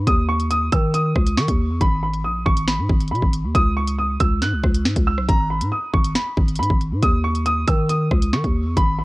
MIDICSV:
0, 0, Header, 1, 4, 480
1, 0, Start_track
1, 0, Tempo, 434783
1, 77, Time_signature, 4, 2, 24, 8
1, 9983, End_track
2, 0, Start_track
2, 0, Title_t, "Grand piano"
2, 0, Program_c, 0, 0
2, 76, Note_on_c, 0, 87, 98
2, 278, Note_off_c, 0, 87, 0
2, 315, Note_on_c, 0, 85, 90
2, 517, Note_off_c, 0, 85, 0
2, 557, Note_on_c, 0, 87, 94
2, 759, Note_off_c, 0, 87, 0
2, 797, Note_on_c, 0, 88, 82
2, 999, Note_off_c, 0, 88, 0
2, 1036, Note_on_c, 0, 87, 93
2, 1488, Note_off_c, 0, 87, 0
2, 1518, Note_on_c, 0, 85, 89
2, 1969, Note_off_c, 0, 85, 0
2, 1998, Note_on_c, 0, 83, 100
2, 2199, Note_off_c, 0, 83, 0
2, 2239, Note_on_c, 0, 83, 81
2, 2440, Note_off_c, 0, 83, 0
2, 2477, Note_on_c, 0, 87, 76
2, 2679, Note_off_c, 0, 87, 0
2, 2714, Note_on_c, 0, 85, 88
2, 2917, Note_off_c, 0, 85, 0
2, 2957, Note_on_c, 0, 83, 83
2, 3408, Note_off_c, 0, 83, 0
2, 3435, Note_on_c, 0, 83, 90
2, 3638, Note_off_c, 0, 83, 0
2, 3915, Note_on_c, 0, 87, 109
2, 4118, Note_off_c, 0, 87, 0
2, 4158, Note_on_c, 0, 85, 85
2, 4359, Note_off_c, 0, 85, 0
2, 4399, Note_on_c, 0, 87, 85
2, 4600, Note_off_c, 0, 87, 0
2, 4638, Note_on_c, 0, 88, 85
2, 4839, Note_off_c, 0, 88, 0
2, 4876, Note_on_c, 0, 90, 92
2, 5553, Note_off_c, 0, 90, 0
2, 5598, Note_on_c, 0, 88, 78
2, 5799, Note_off_c, 0, 88, 0
2, 5835, Note_on_c, 0, 82, 113
2, 6038, Note_off_c, 0, 82, 0
2, 6076, Note_on_c, 0, 83, 84
2, 6278, Note_off_c, 0, 83, 0
2, 6316, Note_on_c, 0, 87, 79
2, 6518, Note_off_c, 0, 87, 0
2, 6556, Note_on_c, 0, 85, 86
2, 6758, Note_off_c, 0, 85, 0
2, 6796, Note_on_c, 0, 83, 84
2, 7248, Note_off_c, 0, 83, 0
2, 7276, Note_on_c, 0, 83, 87
2, 7478, Note_off_c, 0, 83, 0
2, 7757, Note_on_c, 0, 87, 105
2, 7959, Note_off_c, 0, 87, 0
2, 7995, Note_on_c, 0, 85, 88
2, 8198, Note_off_c, 0, 85, 0
2, 8237, Note_on_c, 0, 87, 94
2, 8439, Note_off_c, 0, 87, 0
2, 8478, Note_on_c, 0, 88, 83
2, 8680, Note_off_c, 0, 88, 0
2, 8717, Note_on_c, 0, 87, 93
2, 9168, Note_off_c, 0, 87, 0
2, 9199, Note_on_c, 0, 85, 89
2, 9649, Note_off_c, 0, 85, 0
2, 9678, Note_on_c, 0, 83, 103
2, 9879, Note_off_c, 0, 83, 0
2, 9918, Note_on_c, 0, 83, 77
2, 9983, Note_off_c, 0, 83, 0
2, 9983, End_track
3, 0, Start_track
3, 0, Title_t, "808-style bass"
3, 0, Program_c, 1, 38
3, 77, Note_on_c, 1, 39, 116
3, 768, Note_off_c, 1, 39, 0
3, 798, Note_on_c, 1, 51, 102
3, 1258, Note_off_c, 1, 51, 0
3, 1276, Note_on_c, 1, 37, 108
3, 1517, Note_on_c, 1, 51, 104
3, 1534, Note_off_c, 1, 37, 0
3, 1631, Note_off_c, 1, 51, 0
3, 1636, Note_on_c, 1, 39, 109
3, 1876, Note_on_c, 1, 40, 103
3, 1893, Note_off_c, 1, 39, 0
3, 1991, Note_off_c, 1, 40, 0
3, 1997, Note_on_c, 1, 32, 112
3, 2477, Note_on_c, 1, 34, 99
3, 2493, Note_off_c, 1, 32, 0
3, 2705, Note_off_c, 1, 34, 0
3, 2717, Note_on_c, 1, 32, 104
3, 3077, Note_on_c, 1, 44, 102
3, 3093, Note_off_c, 1, 32, 0
3, 3191, Note_off_c, 1, 44, 0
3, 3196, Note_on_c, 1, 32, 114
3, 3437, Note_on_c, 1, 47, 104
3, 3453, Note_off_c, 1, 32, 0
3, 3551, Note_off_c, 1, 47, 0
3, 3557, Note_on_c, 1, 32, 110
3, 3797, Note_on_c, 1, 39, 101
3, 3813, Note_off_c, 1, 32, 0
3, 3911, Note_off_c, 1, 39, 0
3, 3917, Note_on_c, 1, 37, 113
3, 4608, Note_off_c, 1, 37, 0
3, 4638, Note_on_c, 1, 37, 105
3, 4877, Note_on_c, 1, 44, 97
3, 4894, Note_off_c, 1, 37, 0
3, 4997, Note_on_c, 1, 37, 102
3, 5013, Note_off_c, 1, 44, 0
3, 5111, Note_off_c, 1, 37, 0
3, 5116, Note_on_c, 1, 37, 110
3, 5357, Note_on_c, 1, 44, 99
3, 5373, Note_off_c, 1, 37, 0
3, 5471, Note_off_c, 1, 44, 0
3, 5477, Note_on_c, 1, 37, 110
3, 5717, Note_on_c, 1, 35, 105
3, 5734, Note_off_c, 1, 37, 0
3, 5831, Note_off_c, 1, 35, 0
3, 5837, Note_on_c, 1, 32, 110
3, 6197, Note_on_c, 1, 44, 100
3, 6213, Note_off_c, 1, 32, 0
3, 6311, Note_off_c, 1, 44, 0
3, 6558, Note_on_c, 1, 32, 99
3, 6788, Note_off_c, 1, 32, 0
3, 7036, Note_on_c, 1, 32, 108
3, 7277, Note_on_c, 1, 44, 105
3, 7293, Note_off_c, 1, 32, 0
3, 7391, Note_off_c, 1, 44, 0
3, 7397, Note_on_c, 1, 32, 105
3, 7637, Note_on_c, 1, 44, 106
3, 7653, Note_off_c, 1, 32, 0
3, 7751, Note_off_c, 1, 44, 0
3, 7757, Note_on_c, 1, 39, 115
3, 8448, Note_off_c, 1, 39, 0
3, 8477, Note_on_c, 1, 51, 102
3, 8938, Note_off_c, 1, 51, 0
3, 8956, Note_on_c, 1, 37, 113
3, 9197, Note_on_c, 1, 51, 103
3, 9214, Note_off_c, 1, 37, 0
3, 9311, Note_off_c, 1, 51, 0
3, 9317, Note_on_c, 1, 39, 110
3, 9557, Note_on_c, 1, 40, 101
3, 9573, Note_off_c, 1, 39, 0
3, 9671, Note_off_c, 1, 40, 0
3, 9677, Note_on_c, 1, 32, 109
3, 9983, Note_off_c, 1, 32, 0
3, 9983, End_track
4, 0, Start_track
4, 0, Title_t, "Drums"
4, 77, Note_on_c, 9, 36, 118
4, 77, Note_on_c, 9, 42, 76
4, 187, Note_off_c, 9, 36, 0
4, 187, Note_off_c, 9, 42, 0
4, 437, Note_on_c, 9, 42, 45
4, 547, Note_off_c, 9, 42, 0
4, 557, Note_on_c, 9, 42, 80
4, 667, Note_off_c, 9, 42, 0
4, 797, Note_on_c, 9, 42, 87
4, 798, Note_on_c, 9, 36, 102
4, 907, Note_off_c, 9, 42, 0
4, 908, Note_off_c, 9, 36, 0
4, 1037, Note_on_c, 9, 42, 86
4, 1147, Note_off_c, 9, 42, 0
4, 1276, Note_on_c, 9, 36, 100
4, 1277, Note_on_c, 9, 37, 93
4, 1386, Note_off_c, 9, 36, 0
4, 1388, Note_off_c, 9, 37, 0
4, 1397, Note_on_c, 9, 42, 85
4, 1507, Note_off_c, 9, 42, 0
4, 1517, Note_on_c, 9, 38, 113
4, 1627, Note_off_c, 9, 38, 0
4, 1636, Note_on_c, 9, 36, 92
4, 1636, Note_on_c, 9, 42, 82
4, 1747, Note_off_c, 9, 36, 0
4, 1747, Note_off_c, 9, 42, 0
4, 1996, Note_on_c, 9, 42, 74
4, 1997, Note_on_c, 9, 36, 120
4, 2107, Note_off_c, 9, 36, 0
4, 2107, Note_off_c, 9, 42, 0
4, 2357, Note_on_c, 9, 42, 79
4, 2467, Note_off_c, 9, 42, 0
4, 2717, Note_on_c, 9, 36, 97
4, 2828, Note_off_c, 9, 36, 0
4, 2836, Note_on_c, 9, 42, 80
4, 2947, Note_off_c, 9, 42, 0
4, 2955, Note_on_c, 9, 38, 114
4, 2956, Note_on_c, 9, 42, 85
4, 3066, Note_off_c, 9, 38, 0
4, 3067, Note_off_c, 9, 42, 0
4, 3196, Note_on_c, 9, 36, 102
4, 3306, Note_off_c, 9, 36, 0
4, 3317, Note_on_c, 9, 42, 48
4, 3397, Note_off_c, 9, 42, 0
4, 3397, Note_on_c, 9, 42, 63
4, 3477, Note_off_c, 9, 42, 0
4, 3477, Note_on_c, 9, 42, 80
4, 3557, Note_on_c, 9, 36, 88
4, 3587, Note_off_c, 9, 42, 0
4, 3667, Note_off_c, 9, 36, 0
4, 3677, Note_on_c, 9, 42, 75
4, 3787, Note_off_c, 9, 42, 0
4, 3917, Note_on_c, 9, 36, 123
4, 3917, Note_on_c, 9, 42, 76
4, 4027, Note_off_c, 9, 36, 0
4, 4027, Note_off_c, 9, 42, 0
4, 4277, Note_on_c, 9, 42, 74
4, 4387, Note_off_c, 9, 42, 0
4, 4636, Note_on_c, 9, 42, 84
4, 4637, Note_on_c, 9, 36, 96
4, 4747, Note_off_c, 9, 42, 0
4, 4748, Note_off_c, 9, 36, 0
4, 4876, Note_on_c, 9, 38, 69
4, 4877, Note_on_c, 9, 42, 84
4, 4986, Note_off_c, 9, 38, 0
4, 4987, Note_off_c, 9, 42, 0
4, 5116, Note_on_c, 9, 36, 96
4, 5118, Note_on_c, 9, 37, 92
4, 5226, Note_off_c, 9, 36, 0
4, 5228, Note_off_c, 9, 37, 0
4, 5237, Note_on_c, 9, 42, 86
4, 5347, Note_off_c, 9, 42, 0
4, 5357, Note_on_c, 9, 38, 113
4, 5467, Note_off_c, 9, 38, 0
4, 5477, Note_on_c, 9, 36, 87
4, 5477, Note_on_c, 9, 42, 86
4, 5587, Note_off_c, 9, 36, 0
4, 5587, Note_off_c, 9, 42, 0
4, 5718, Note_on_c, 9, 37, 71
4, 5828, Note_off_c, 9, 37, 0
4, 5837, Note_on_c, 9, 36, 118
4, 5837, Note_on_c, 9, 42, 76
4, 5947, Note_off_c, 9, 36, 0
4, 5947, Note_off_c, 9, 42, 0
4, 6197, Note_on_c, 9, 42, 81
4, 6307, Note_off_c, 9, 42, 0
4, 6558, Note_on_c, 9, 36, 97
4, 6668, Note_off_c, 9, 36, 0
4, 6677, Note_on_c, 9, 42, 82
4, 6787, Note_off_c, 9, 42, 0
4, 6796, Note_on_c, 9, 38, 114
4, 6797, Note_on_c, 9, 42, 85
4, 6906, Note_off_c, 9, 38, 0
4, 6907, Note_off_c, 9, 42, 0
4, 7036, Note_on_c, 9, 36, 100
4, 7146, Note_off_c, 9, 36, 0
4, 7157, Note_on_c, 9, 42, 49
4, 7237, Note_off_c, 9, 42, 0
4, 7237, Note_on_c, 9, 42, 66
4, 7317, Note_off_c, 9, 42, 0
4, 7317, Note_on_c, 9, 42, 83
4, 7397, Note_on_c, 9, 36, 88
4, 7427, Note_off_c, 9, 42, 0
4, 7507, Note_off_c, 9, 36, 0
4, 7516, Note_on_c, 9, 42, 76
4, 7627, Note_off_c, 9, 42, 0
4, 7756, Note_on_c, 9, 42, 75
4, 7757, Note_on_c, 9, 36, 122
4, 7867, Note_off_c, 9, 36, 0
4, 7867, Note_off_c, 9, 42, 0
4, 8116, Note_on_c, 9, 42, 46
4, 8227, Note_off_c, 9, 42, 0
4, 8237, Note_on_c, 9, 42, 75
4, 8347, Note_off_c, 9, 42, 0
4, 8477, Note_on_c, 9, 36, 103
4, 8477, Note_on_c, 9, 42, 83
4, 8587, Note_off_c, 9, 42, 0
4, 8588, Note_off_c, 9, 36, 0
4, 8717, Note_on_c, 9, 42, 86
4, 8827, Note_off_c, 9, 42, 0
4, 8956, Note_on_c, 9, 36, 101
4, 8958, Note_on_c, 9, 37, 90
4, 9066, Note_off_c, 9, 36, 0
4, 9068, Note_off_c, 9, 37, 0
4, 9077, Note_on_c, 9, 42, 85
4, 9187, Note_off_c, 9, 42, 0
4, 9197, Note_on_c, 9, 38, 114
4, 9307, Note_off_c, 9, 38, 0
4, 9317, Note_on_c, 9, 36, 89
4, 9317, Note_on_c, 9, 42, 86
4, 9427, Note_off_c, 9, 36, 0
4, 9427, Note_off_c, 9, 42, 0
4, 9677, Note_on_c, 9, 36, 120
4, 9677, Note_on_c, 9, 42, 77
4, 9787, Note_off_c, 9, 36, 0
4, 9787, Note_off_c, 9, 42, 0
4, 9983, End_track
0, 0, End_of_file